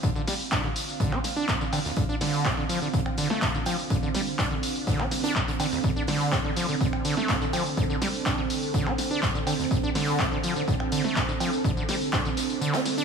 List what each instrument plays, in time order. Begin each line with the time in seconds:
Already playing: analog synth pad D3 C4 F5
0.03 acid bass D3, kick, closed hi-hat, tambourine
0.16 acid bass D3, tambourine
0.27 acid bass G3, snare, closed hi-hat, open hi-hat, tambourine
0.40 tambourine
0.51 acid bass D4, finger snap, kick, snare, clap, closed hi-hat, tambourine, cowbell
0.64 acid bass D3
0.76 closed hi-hat, open hi-hat, tambourine
0.89 tambourine
1.00 acid bass D3, kick, closed hi-hat, tambourine
1.12 acid bass D4, finger snap, clap, cowbell
1.24 snare, closed hi-hat, open hi-hat, tambourine
1.36 acid bass D4, tambourine
1.48 kick, snare, clap, closed hi-hat, tambourine
1.61 acid bass D3, tambourine
1.73 acid bass D3, closed hi-hat, open hi-hat, tambourine, cowbell
1.85 acid bass D2, snare, tambourine
1.96 acid bass D3, kick, closed hi-hat, tambourine
2.09 acid bass D4, tambourine
2.21 acid bass D3, snare, open hi-hat, tambourine
2.34 tambourine
2.45 acid bass C3, finger snap, kick, snare, clap, closed hi-hat, tambourine, cowbell
2.57 acid bass D3
2.69 acid bass F3, closed hi-hat, open hi-hat, tambourine
2.82 acid bass D3, tambourine
2.94 acid bass D3, kick, closed hi-hat, tambourine
3.06 finger snap, cowbell
3.17 acid bass D3, closed hi-hat, open hi-hat, tambourine
3.30 acid bass A3, snare, tambourine
3.42 acid bass C3, kick, snare, clap, closed hi-hat, tambourine
3.54 acid bass D3, tambourine
3.66 acid bass F3, closed hi-hat, open hi-hat, tambourine, cowbell
3.79 tambourine
3.90 acid bass D3, kick, closed hi-hat, tambourine
4.03 acid bass D3, tambourine
4.14 acid bass G3, snare, closed hi-hat, open hi-hat, tambourine
4.27 tambourine
4.39 acid bass D4, finger snap, kick, snare, clap, closed hi-hat, tambourine, cowbell
4.51 acid bass D3
4.63 closed hi-hat, open hi-hat, tambourine
4.76 tambourine
4.87 acid bass D3, kick, snare, closed hi-hat, tambourine
4.99 acid bass D4, finger snap, clap, cowbell
5.11 snare, closed hi-hat, open hi-hat, tambourine
5.24 acid bass D4, snare, closed hi-hat, tambourine
5.35 kick, clap, tambourine
5.48 acid bass D3, closed hi-hat, tambourine
5.60 acid bass D3, closed hi-hat, open hi-hat, tambourine, cowbell
5.72 acid bass D2, snare, tambourine
5.84 acid bass D3, analog synth pad A4, kick, closed hi-hat, tambourine
5.96 acid bass D4, tambourine
6.07 acid bass D3, snare, open hi-hat, tambourine
6.21 tambourine
6.32 acid bass C3, finger snap, kick, snare, clap, closed hi-hat, tambourine, cowbell
6.45 acid bass D3
6.56 acid bass F3, closed hi-hat, open hi-hat, tambourine
6.69 acid bass D3, tambourine
6.81 acid bass D3, kick, closed hi-hat, tambourine
6.93 finger snap, cowbell
7.05 acid bass D3, closed hi-hat, open hi-hat, tambourine
7.17 acid bass A3, snare, tambourine
7.29 acid bass C3, kick, snare, clap, closed hi-hat, tambourine
7.41 acid bass D3, tambourine
7.53 acid bass F3, closed hi-hat, open hi-hat, tambourine, cowbell
7.66 tambourine
7.77 acid bass D3, kick, closed hi-hat, tambourine
7.90 acid bass D3, tambourine
8.02 acid bass G3, snare, closed hi-hat, open hi-hat, tambourine
8.14 tambourine
8.25 acid bass D4, finger snap, kick, snare, clap, closed hi-hat, tambourine, cowbell
8.38 acid bass D3
8.50 closed hi-hat, open hi-hat, tambourine
8.63 tambourine
8.74 acid bass D3, kick, closed hi-hat, tambourine
8.86 acid bass D4, finger snap, clap, cowbell
8.98 snare, closed hi-hat, open hi-hat, tambourine
9.11 acid bass D4, tambourine
9.22 kick, snare, clap, closed hi-hat, tambourine
9.35 acid bass D3, tambourine
9.47 acid bass D3, closed hi-hat, open hi-hat, tambourine, cowbell
9.59 acid bass D2, snare, tambourine
9.71 acid bass D3, kick, closed hi-hat, tambourine
9.83 acid bass D4, tambourine
9.95 acid bass D3, snare, open hi-hat, tambourine
10.08 tambourine
10.19 acid bass C3, finger snap, kick, snare, clap, closed hi-hat, tambourine, cowbell
10.32 acid bass D3
10.43 acid bass F3, closed hi-hat, open hi-hat, tambourine
10.56 acid bass D3, tambourine
10.68 acid bass D3, kick, closed hi-hat, tambourine
10.80 finger snap, cowbell
10.92 acid bass D3, closed hi-hat, open hi-hat, tambourine
11.04 acid bass A3, snare, tambourine
11.16 acid bass C3, kick, snare, clap, closed hi-hat, tambourine
11.29 acid bass D3, tambourine
11.40 acid bass F3, closed hi-hat, open hi-hat, tambourine, cowbell
11.53 tambourine
11.64 acid bass D3, kick, closed hi-hat, tambourine
11.77 acid bass D3, tambourine
11.88 acid bass G3, snare, closed hi-hat, open hi-hat, tambourine
12.01 tambourine
12.12 acid bass D4, finger snap, kick, snare, clap, closed hi-hat, tambourine, cowbell
12.25 acid bass D3, tambourine
12.37 snare, closed hi-hat, open hi-hat, tambourine
12.50 tambourine
12.61 acid bass D3, closed hi-hat, tambourine
12.73 acid bass D4, finger snap, snare, clap, closed hi-hat, tambourine, cowbell
12.86 snare, open hi-hat, tambourine
12.98 acid bass D4, closed hi-hat, tambourine